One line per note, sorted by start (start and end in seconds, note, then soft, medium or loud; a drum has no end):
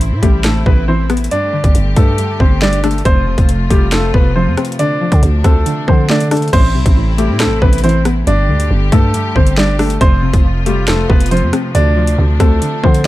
0.00 0.13 A1 loud
0.00 0.43 A2 medium
0.00 0.65 C3 medium
0.00 1.27 C3 medium
0.00 6.49 A3 medium
0.00 1.30 C4 medium
0.00 1.30 E4 medium
0.00 closed hi-hat loud
0.12 0.22 A2 loud
0.23 0.64 A1 loud
0.23 0.40 G3 medium
0.23 1.31 A3 medium
0.23 0.39 G4 medium
0.23 kick loud
0.23 closed hi-hat medium
0.44 1.31 A2 medium
0.44 0.62 A3 medium
0.44 0.61 A4 medium
0.44 snare loud
0.44 closed hi-hat medium
0.66 1.29 A1 loud
0.66 1.31 C3 medium
0.66 0.83 B3 medium
0.66 0.83 B4 medium
0.66 kick loud
0.88 1.31 E3 medium
0.88 1.05 C4 medium
0.88 1.05 C5 medium
1.10 1.31 B3 medium
1.10 cross-stick loud
1.10 closed hi-hat medium
1.17 closed hi-hat medium
1.24 closed hi-hat medium
1.31 1.74 G2 medium
1.31 3.04 D3 medium
1.31 3.03 G3 medium
1.31 1.73 D4 medium
1.31 3.04 G4 medium
1.31 1.72 D5 loud
1.31 closed hi-hat medium
1.53 2.39 D3 medium
1.64 1.74 G1 loud
1.64 kick loud
1.64 closed hi-hat medium
1.75 1.96 G1 loud
1.75 2.17 G2 medium
1.75 closed hi-hat loud
1.96 2.17 G2 loud
1.96 3.05 A3 medium
1.96 2.38 A3 medium
1.96 2.38 A4 medium
1.96 kick loud
1.96 closed hi-hat medium
2.18 3.05 G2 medium
2.18 closed hi-hat medium
2.40 3.03 G1 loud
2.40 3.05 D3 medium
2.40 2.57 C4 medium
2.40 2.57 C5 medium
2.40 kick loud
2.62 3.05 G3 medium
2.62 2.79 D4 medium
2.62 2.78 D5 loud
2.62 snare loud
2.73 closed hi-hat medium
2.84 3.01 A3 medium
2.84 3.05 D4 medium
2.84 3.00 A4 medium
2.84 cross-stick loud
2.84 closed hi-hat medium
2.91 closed hi-hat medium
2.98 closed hi-hat soft
3.05 3.37 F1 loud
3.05 3.48 F2 medium
3.05 6.50 C3 medium
3.05 4.77 F3 medium
3.05 3.47 C4 medium
3.05 4.77 F4 medium
3.05 3.46 C5 loud
3.05 kick loud
3.05 closed hi-hat medium
3.27 4.13 C3 medium
3.38 3.69 F1 loud
3.38 kick loud
3.38 closed hi-hat medium
3.49 3.91 F2 medium
3.49 closed hi-hat loud
3.70 4.12 F1 loud
3.70 3.88 G3 medium
3.70 4.79 A3 medium
3.70 3.87 G4 medium
3.70 kick loud
3.70 closed hi-hat medium
3.92 4.79 F2 medium
3.92 4.09 A3 medium
3.92 4.09 A4 medium
3.92 snare loud
3.92 closed hi-hat medium
4.14 4.48 F1 loud
4.14 4.79 C3 medium
4.14 4.31 B3 medium
4.14 4.31 B4 medium
4.14 kick loud
4.36 4.79 F3 medium
4.36 4.53 C4 medium
4.36 4.52 C5 medium
4.47 4.57 F2 loud
4.57 4.79 C4 medium
4.57 cross-stick loud
4.57 closed hi-hat medium
4.65 closed hi-hat medium
4.72 closed hi-hat medium
4.79 5.22 D3 loud
4.79 6.51 F3 medium
4.79 6.51 D4 medium
4.79 5.20 D4 medium
4.79 5.20 D5 loud
4.79 closed hi-hat medium
5.01 5.87 F3 medium
5.12 5.22 D3 loud
5.12 kick loud
5.12 closed hi-hat medium
5.23 5.44 D2 loud
5.23 5.65 D3 medium
5.23 closed hi-hat medium
5.44 5.65 D2 loud
5.44 5.86 A3 medium
5.44 6.53 C4 medium
5.44 5.85 A4 medium
5.44 kick loud
5.44 cross-stick loud
5.44 closed hi-hat medium
5.66 6.53 D3 medium
5.66 closed hi-hat medium
5.88 6.50 D3 loud
5.88 6.53 F3 medium
5.88 6.05 C4 medium
5.88 6.04 C5 medium
5.88 kick loud
6.10 6.53 A3 medium
6.10 6.27 D4 medium
6.10 6.26 D5 medium
6.10 snare loud
6.20 closed hi-hat medium
6.31 6.48 A3 medium
6.31 6.53 D4 loud
6.31 6.48 A4 medium
6.31 cross-stick loud
6.31 closed hi-hat medium
6.31 open hi-hat medium
6.37 closed hi-hat medium
6.42 closed hi-hat medium
6.48 closed hi-hat soft
6.53 6.76 A1 loud
6.53 6.95 A2 loud
6.53 8.25 C3 medium
6.53 8.25 A3 medium
6.53 8.25 C4 medium
6.53 6.94 C4 medium
6.53 8.25 E4 loud
6.53 6.94 C5 loud
6.53 kick loud
6.53 closed hi-hat medium
6.53 crash loud
6.75 6.85 C2 loud
6.75 7.61 C3 medium
6.86 7.31 A1 loud
6.86 kick loud
6.86 closed hi-hat medium
6.97 7.39 A2 medium
7.18 7.35 G3 medium
7.18 8.27 A3 medium
7.18 7.35 G4 medium
7.18 closed hi-hat medium
7.29 7.47 A2 loud
7.40 8.27 A2 medium
7.40 7.57 A3 medium
7.40 7.57 A4 medium
7.40 snare loud
7.40 closed hi-hat medium
7.45 7.61 A1 loud
7.62 8.24 A1 loud
7.62 8.27 C3 medium
7.62 7.79 B3 medium
7.62 7.78 B4 medium
7.62 kick loud
7.73 closed hi-hat medium
7.78 closed hi-hat medium
7.84 8.27 E3 medium
7.84 8.01 C4 medium
7.84 8.00 C5 medium
7.84 closed hi-hat medium
7.89 closed hi-hat soft
8.05 8.27 B3 medium
8.05 cross-stick loud
8.05 closed hi-hat medium
8.27 8.50 G1 loud
8.27 8.70 G2 medium
8.27 9.99 D3 medium
8.27 9.99 G3 medium
8.27 13.07 A3 medium
8.27 8.68 D4 medium
8.27 9.99 G4 loud
8.27 8.68 D5 loud
8.27 closed hi-hat medium
8.49 8.69 D2 medium
8.49 9.35 D3 medium
8.60 closed hi-hat medium
8.71 8.91 G1 loud
8.71 9.13 G2 medium
8.92 9.13 G2 loud
8.92 10.01 A3 medium
8.92 9.34 A3 medium
8.92 9.33 A4 medium
8.92 kick loud
8.92 closed hi-hat medium
9.14 10.01 G2 medium
9.14 closed hi-hat medium
9.36 9.98 G1 loud
9.36 10.01 D3 medium
9.36 9.53 C4 medium
9.36 9.52 C5 medium
9.36 kick loud
9.47 closed hi-hat medium
9.57 10.01 G3 medium
9.57 9.75 D4 medium
9.57 9.74 D5 loud
9.57 snare loud
9.79 9.96 A3 medium
9.79 10.01 D4 medium
9.79 9.96 A4 medium
9.79 cross-stick loud
9.79 open hi-hat medium
9.90 closed hi-hat medium
10.01 10.32 F1 loud
10.01 10.43 F2 loud
10.01 13.07 C3 medium
10.01 13.07 F3 medium
10.01 10.42 C4 medium
10.01 11.73 F4 medium
10.01 10.42 C5 loud
10.01 kick loud
10.01 closed hi-hat medium
10.23 11.08 C3 medium
10.34 11.07 F1 loud
10.34 kick loud
10.34 closed hi-hat medium
10.44 10.87 F2 medium
10.66 10.83 G3 medium
10.66 11.75 A3 medium
10.66 10.83 G4 medium
10.66 closed hi-hat medium
10.88 11.75 F2 medium
10.88 11.05 A3 medium
10.88 11.05 A4 medium
10.88 snare loud
10.88 closed hi-hat medium
11.10 11.44 F1 loud
11.10 11.75 C3 medium
11.10 11.27 B3 medium
11.10 11.26 B4 medium
11.10 kick loud
11.20 closed hi-hat medium
11.26 closed hi-hat medium
11.31 11.75 F3 medium
11.31 11.48 C4 medium
11.31 11.48 C5 medium
11.31 closed hi-hat medium
11.37 closed hi-hat soft
11.42 11.53 F2 loud
11.53 11.75 C4 medium
11.53 cross-stick loud
11.53 closed hi-hat medium
11.75 12.17 D2 loud
11.75 12.17 D3 loud
11.75 13.07 D4 medium
11.75 12.16 D4 medium
11.75 12.16 D5 loud
11.75 closed hi-hat medium
11.97 12.82 F3 medium
12.07 closed hi-hat medium
12.18 12.39 D2 loud
12.18 12.61 D3 medium
12.40 12.61 D2 loud
12.40 12.81 A3 medium
12.40 13.07 C4 medium
12.40 12.81 A4 medium
12.40 kick loud
12.40 cross-stick loud
12.40 closed hi-hat medium
12.62 13.07 D3 medium
12.62 closed hi-hat medium
12.84 13.07 D3 loud
12.84 13.07 F3 medium
12.84 13.01 C4 medium
12.84 13.00 C5 medium
12.84 kick loud
12.94 closed hi-hat medium